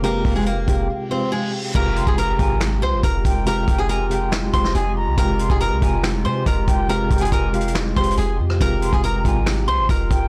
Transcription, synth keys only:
\new Staff \with { instrumentName = "Synth keys" } { \time 4/4 \key f \minor \tempo 4 = 140 <c aes f' g'>4~ <c aes f' g'>16 r16 <c aes f' g'>8. r16 <c aes f' g'>4~ <c aes f' g'>16 r16 | <c aes f' g'>8 r16 <c aes f' g'>8 r16 <c aes f' g'>4. r4 | <c aes f' g'>4~ <c aes f' g'>16 r16 <c aes f' g'>8. r16 <c aes f' g'>4~ <c aes f' g'>16 r16 | <c aes f' g'>8 r16 <c aes f' g'>8 r16 <c aes f' g'>4. r4 |
<c aes f' g'>4~ <c aes f' g'>16 r16 <c aes f' g'>8. r16 <c aes f' g'>4~ <c aes f' g'>16 r16 | <c aes f' g'>8 r16 <c aes f' g'>8 r16 <c aes f' g'>4. r4 | }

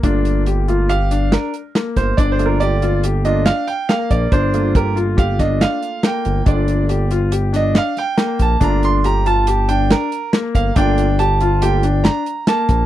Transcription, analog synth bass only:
\new Staff \with { instrumentName = "Analog synth bass" } { \clef bass \time 5/4 \key g \minor \tempo 4 = 140 g,,1 r8 g,,8 | g,,1 r8 bes,,8 | g,,1 r8 g,,8 | g,,1 r8 bes,,8 |
g,,1 r8 g,,8 | g,,1 r8 bes,,8 | }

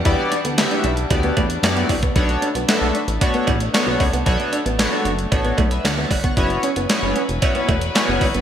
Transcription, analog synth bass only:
\new Staff \with { instrumentName = "Analog synth bass" } { \clef bass \time 4/4 \key b \minor \tempo 4 = 114 e,16 r8 d,8 r16 b,,8 d,8 e,8 fis,8 c,8 | b,,8 r16 b,,16 r16 b,,16 r16 a,,16 r8 a,,8 r16 b,,16 cis,16 c,16 | b,,16 r8 a,,8 r16 fis,,8 a,,8 b,,8 d,8 g,,8 | fis,,8 r16 fis,,16 r16 fis,,16 r16 e,,16 r8 e,,8 r16 fis,,16 gis,,16 g,,16 | }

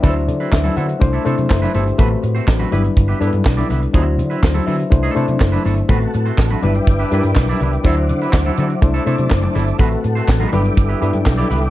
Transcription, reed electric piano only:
\new Staff \with { instrumentName = "Reed electric piano" } { \time 4/4 \key g \major \tempo 4 = 123 << { e''8 <a' d''>8 <b' e''>8 <c'' fis''>8 d''4 <b' c'' e''>8 <g' c''>8~ | <g' c''>8 r2. r8 | r4 <fis' c''>8 <b' e''>4 r4. | r1 |
r1 | r1 | } \\ { <fis d' e' b' c''>4.~ <fis d' e' b' c''>16 r16 <a d' e' c''>8 <a d' e' c''>4. | <a c' fis' b'>4. <g d' e' b'>4 <g d' e' a' b'>4. | <fis d' e' c''>4.~ <fis d' e' c''>16 r16 <a d' e' c''>8 <a d' e' c''>4. | <a c' fis' b'>4. <g d' e' b'>4 <g d' e' bes' b'>4. |
<fis d' e' c''>4.~ <fis d' e' c''>16 r16 <a d' e' c''>8 <a d' e' c''>4. | <a c' fis' b'>4. <g d' e' b'>4 <g d' e' b'>4. | } >> }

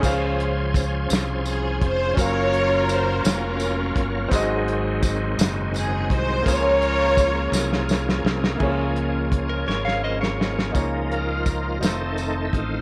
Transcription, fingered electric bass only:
\new Staff \with { instrumentName = "Fingered electric bass" } { \clef bass \time 6/8 \key des \major \tempo 4. = 56 des,4. c,4 f,,8 | ges,,4. f,,4 g,,8 | aes,,4. ges,,4 c,8 | des,4. c,4 c,8 |
des,4. aes,,4. | des,4. f,,4 a,,8 | }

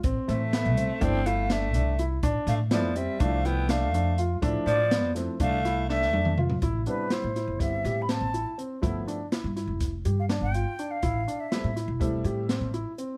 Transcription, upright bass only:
\new Staff \with { instrumentName = "Upright bass" } { \clef bass \time 9/8 \key a \minor \tempo 4. = 82 a,,16 r16 a,8. c,8 r16 g,,4. c,4 | a,,16 r16 a,8. f,8 r16 c,4. f,4 | a,,16 r16 a,8. f,8 r16 c,4. f,4 | a,,8 r8. a,8 g,,8. a,8. a,,8 r8. |
g,,8 r8. g,8 f,,8. g,8. g,,8 r8. | a,,8 r8. a,8 e,,8. a,8. a,,8 r8. | }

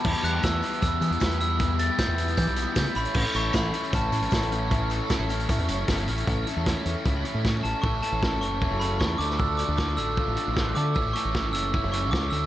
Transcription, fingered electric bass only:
\new Staff \with { instrumentName = "Fingered electric bass" } { \clef bass \time 4/4 \key a \mixolydian \tempo 4 = 154 e,16 r16 e,8 e,8 r8 e,8 e16 e,16 e,4~ | e,4 r16 e,8. e16 b,,8 r16 cis16 r16 a,,16 r16 | a,,16 r16 a,,8 a,,8 r8 a,,8 a,16 a,,16 a,,4~ | a,,4 r16 a,,8. a,16 e,16 fis,,8 g,,8 a,,8 |
a,,8 r16 e,8 r16 e,16 r16 cis,8 r16 a,8. a,,16 r16 | \key a \major a,,8 r16 a,,8. fis,,8. fis,,8. e,8 d,8~ | d,8. d,8. a,,8 r16 a,,16 r16 a,,8. d8 | a,,8 r16 a,,8. fis,,8. fis,,8. cis,8 d,8 | }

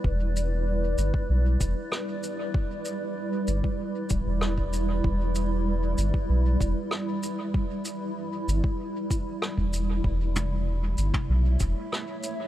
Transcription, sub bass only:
\new Staff \with { instrumentName = "Sub bass" } { \clef bass \time 4/4 \key e \dorian \tempo 4 = 96 e,,4. g,,16 r16 b,,8 e,,16 r4 r16 | r4. g,,16 r8. d,,16 e,,4~ e,,16 | e,,4. g,,16 r16 b,,8 e,,16 r4 r16 | r4. g,,16 r4. e,,8. |
e,,4. g,,16 r16 b,,8 e,,16 r4 r16 | }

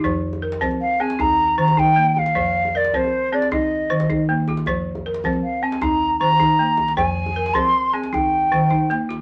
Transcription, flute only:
\new Staff \with { instrumentName = "Flute" } { \time 12/8 \key f \minor \tempo 4. = 104 r2 f''8 aes''8 bes''4 bes''8 g''4 f''8~ | f''4 d''8 c''4 d''8 ees''2 r4 | r2 f''8 aes''8 bes''4 bes''2 | aes''4. c'''4 aes''8 g''2 r4 | }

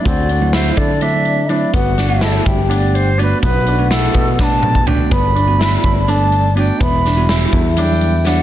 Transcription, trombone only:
\new Staff \with { instrumentName = "Trombone" } { \time 7/8 \key g \major \tempo 4 = 125 fis'4. d'4. e'8 | fis'4 a'8 g'4. r8 | fis'2. r8 | d'2.~ d'8 |
e'2.~ e'8 | }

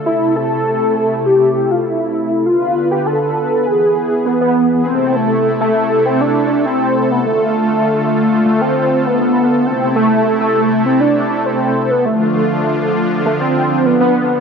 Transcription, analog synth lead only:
\new Staff \with { instrumentName = "Analog synth lead" } { \time 4/4 \key a \minor \tempo 4 = 100 e'8 a'4. g'8. f'16 e'4 | f'8. g'16 a'4 gis'4 b16 b8. | c'8 a8. a8. c'16 d'8. c'8. b16 | a2 a16 c'8. b16 b8. |
c'8 a8. a8. c'16 d'8. c'8. b16 | a2 a16 c'8. b16 b8. | }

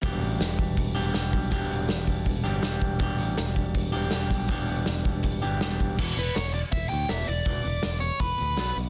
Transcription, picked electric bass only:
\new Staff \with { instrumentName = "Picked electric bass" } { \clef bass \time 4/4 \key e \minor \tempo 4 = 162 e,,8 a,,8 e,,8 e,,8 e,,8 e,,8 e,,8 b,,8 | e,,8 e,,8 e,,8 e,,8 e,,8 g,,8 e,,8 e,,8 | e,,8 a,,8 e,,8 e,,8 e,,8 e,,8 e,,8 b,,8 | e,,8 e,,8 e,,8 e,,8 e,,8 g,,8 e,,8 e,,8 |
e,,8 e,,8 e,,4 e,,8 d,8 e,,8 e,,8 | e,,8 e,,8 e,,4 e,,8 d,8 b,,8 b,,8 | }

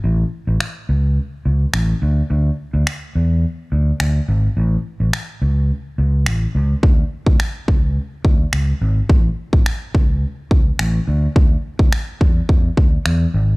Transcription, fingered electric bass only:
\new Staff \with { instrumentName = "Fingered electric bass" } { \clef bass \time 4/4 \key a \major \tempo 4 = 106 a,,8 r16 a,,16 r8 cis,8. r16 cis,8 a,,8 d,8 | d,8 r16 d,16 r8 e,8. r16 d,8 d,8 gis,,8 | a,,8 r16 a,,16 r8 cis,8. r16 cis,8 a,,8 cis,8 | d,8 r16 d,16 r8 cis,8. r16 d,8 cis,8 gis,,8 |
a,,8 r16 a,,16 r8 cis,8. r16 cis,8 a,,8 d,8 | d,8 r16 d,16 r8 e,8 e,8 d,8 e,8 gis,,8 | }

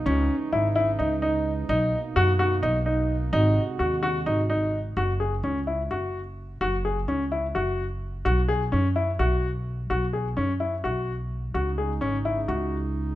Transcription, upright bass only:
\new Staff \with { instrumentName = "Upright bass" } { \clef bass \time 7/8 \key fis \mixolydian \tempo 4 = 128 cis,8 r8 gis,,4 cis,4. | b,,8 r8 fis,4 b,,4. | gis,,8 r8 dis,4 gis,,4. | fis,,4 cis,4 fis,,4. |
fis,,4 cis,4 fis,,4. | b,,4 fis,4 b,,4. | b,,4 fis,4 b,,4. | cis,4 gis,,4 cis,4. | }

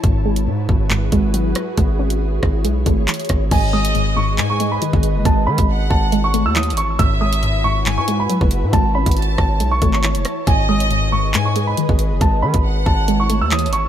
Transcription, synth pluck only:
\new Staff \with { instrumentName = "Synth pluck" } { \clef bass \time 4/4 \key a \lydian \tempo 4 = 138 gis,8 gis8 gis,8 gis,8 gis,8 gis8 fis4 | gis8 cis'4. gis8 a8 e4 | gis,8 gis8 gis,8 gis,8 gis,8 gis8 dis4 | gis8 cis'4. gis8 a8 e4 |
gis,8 gis8 gis,8 gis,8 gis,8 gis8 fis4 | gis8 cis'4. gis8 a8 e4 | gis,8 gis8 gis,8 gis,8 gis,8 gis8 dis4 | gis8 cis'4. gis8 a8 e4 | }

